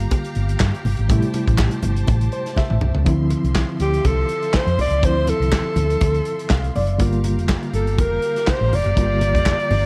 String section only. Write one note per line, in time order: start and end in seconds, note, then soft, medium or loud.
0.00 3.02 G4 medium
0.00 1.08 F5 medium
0.00 1.07 A#5 medium
1.09 3.04 C5 medium
1.09 3.05 A5 medium
3.06 6.96 F3 medium
3.06 6.96 E5 medium
3.06 6.96 C6 medium
6.99 9.86 G4 medium
6.99 9.86 F5 medium
6.99 9.86 A#5 medium